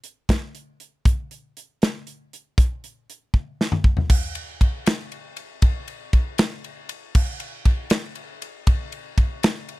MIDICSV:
0, 0, Header, 1, 2, 480
1, 0, Start_track
1, 0, Tempo, 507614
1, 999, Time_signature, 6, 3, 24, 8
1, 9265, End_track
2, 0, Start_track
2, 0, Title_t, "Drums"
2, 34, Note_on_c, 9, 42, 63
2, 129, Note_off_c, 9, 42, 0
2, 273, Note_on_c, 9, 42, 87
2, 275, Note_on_c, 9, 36, 78
2, 284, Note_on_c, 9, 38, 108
2, 368, Note_off_c, 9, 42, 0
2, 369, Note_off_c, 9, 36, 0
2, 378, Note_off_c, 9, 38, 0
2, 517, Note_on_c, 9, 42, 64
2, 612, Note_off_c, 9, 42, 0
2, 757, Note_on_c, 9, 42, 62
2, 852, Note_off_c, 9, 42, 0
2, 996, Note_on_c, 9, 42, 77
2, 997, Note_on_c, 9, 36, 111
2, 1091, Note_off_c, 9, 42, 0
2, 1092, Note_off_c, 9, 36, 0
2, 1239, Note_on_c, 9, 42, 56
2, 1334, Note_off_c, 9, 42, 0
2, 1483, Note_on_c, 9, 42, 61
2, 1577, Note_off_c, 9, 42, 0
2, 1720, Note_on_c, 9, 42, 75
2, 1730, Note_on_c, 9, 38, 109
2, 1814, Note_off_c, 9, 42, 0
2, 1825, Note_off_c, 9, 38, 0
2, 1956, Note_on_c, 9, 42, 61
2, 2051, Note_off_c, 9, 42, 0
2, 2206, Note_on_c, 9, 42, 59
2, 2301, Note_off_c, 9, 42, 0
2, 2438, Note_on_c, 9, 36, 110
2, 2443, Note_on_c, 9, 42, 78
2, 2533, Note_off_c, 9, 36, 0
2, 2537, Note_off_c, 9, 42, 0
2, 2684, Note_on_c, 9, 42, 58
2, 2779, Note_off_c, 9, 42, 0
2, 2928, Note_on_c, 9, 42, 62
2, 3022, Note_off_c, 9, 42, 0
2, 3156, Note_on_c, 9, 36, 78
2, 3251, Note_off_c, 9, 36, 0
2, 3412, Note_on_c, 9, 38, 71
2, 3507, Note_off_c, 9, 38, 0
2, 3516, Note_on_c, 9, 45, 69
2, 3611, Note_off_c, 9, 45, 0
2, 3633, Note_on_c, 9, 36, 91
2, 3728, Note_off_c, 9, 36, 0
2, 3752, Note_on_c, 9, 43, 76
2, 3846, Note_off_c, 9, 43, 0
2, 3875, Note_on_c, 9, 36, 109
2, 3875, Note_on_c, 9, 49, 127
2, 3969, Note_off_c, 9, 36, 0
2, 3970, Note_off_c, 9, 49, 0
2, 4114, Note_on_c, 9, 51, 77
2, 4208, Note_off_c, 9, 51, 0
2, 4358, Note_on_c, 9, 36, 81
2, 4361, Note_on_c, 9, 51, 83
2, 4453, Note_off_c, 9, 36, 0
2, 4455, Note_off_c, 9, 51, 0
2, 4599, Note_on_c, 9, 51, 104
2, 4610, Note_on_c, 9, 38, 116
2, 4694, Note_off_c, 9, 51, 0
2, 4704, Note_off_c, 9, 38, 0
2, 4838, Note_on_c, 9, 51, 80
2, 4933, Note_off_c, 9, 51, 0
2, 5073, Note_on_c, 9, 51, 75
2, 5168, Note_off_c, 9, 51, 0
2, 5313, Note_on_c, 9, 51, 98
2, 5318, Note_on_c, 9, 36, 117
2, 5408, Note_off_c, 9, 51, 0
2, 5412, Note_off_c, 9, 36, 0
2, 5557, Note_on_c, 9, 51, 74
2, 5651, Note_off_c, 9, 51, 0
2, 5797, Note_on_c, 9, 51, 75
2, 5798, Note_on_c, 9, 36, 81
2, 5892, Note_off_c, 9, 51, 0
2, 5893, Note_off_c, 9, 36, 0
2, 6035, Note_on_c, 9, 51, 95
2, 6045, Note_on_c, 9, 38, 122
2, 6129, Note_off_c, 9, 51, 0
2, 6139, Note_off_c, 9, 38, 0
2, 6281, Note_on_c, 9, 51, 77
2, 6376, Note_off_c, 9, 51, 0
2, 6516, Note_on_c, 9, 51, 79
2, 6611, Note_off_c, 9, 51, 0
2, 6761, Note_on_c, 9, 36, 121
2, 6762, Note_on_c, 9, 49, 107
2, 6855, Note_off_c, 9, 36, 0
2, 6857, Note_off_c, 9, 49, 0
2, 6996, Note_on_c, 9, 51, 80
2, 7090, Note_off_c, 9, 51, 0
2, 7236, Note_on_c, 9, 51, 80
2, 7239, Note_on_c, 9, 36, 84
2, 7331, Note_off_c, 9, 51, 0
2, 7333, Note_off_c, 9, 36, 0
2, 7470, Note_on_c, 9, 51, 113
2, 7480, Note_on_c, 9, 38, 115
2, 7564, Note_off_c, 9, 51, 0
2, 7575, Note_off_c, 9, 38, 0
2, 7710, Note_on_c, 9, 51, 88
2, 7804, Note_off_c, 9, 51, 0
2, 7960, Note_on_c, 9, 51, 79
2, 8055, Note_off_c, 9, 51, 0
2, 8197, Note_on_c, 9, 51, 107
2, 8199, Note_on_c, 9, 36, 117
2, 8291, Note_off_c, 9, 51, 0
2, 8294, Note_off_c, 9, 36, 0
2, 8437, Note_on_c, 9, 51, 77
2, 8532, Note_off_c, 9, 51, 0
2, 8677, Note_on_c, 9, 36, 83
2, 8677, Note_on_c, 9, 51, 78
2, 8771, Note_off_c, 9, 51, 0
2, 8772, Note_off_c, 9, 36, 0
2, 8919, Note_on_c, 9, 51, 103
2, 8929, Note_on_c, 9, 38, 118
2, 9013, Note_off_c, 9, 51, 0
2, 9024, Note_off_c, 9, 38, 0
2, 9159, Note_on_c, 9, 51, 79
2, 9253, Note_off_c, 9, 51, 0
2, 9265, End_track
0, 0, End_of_file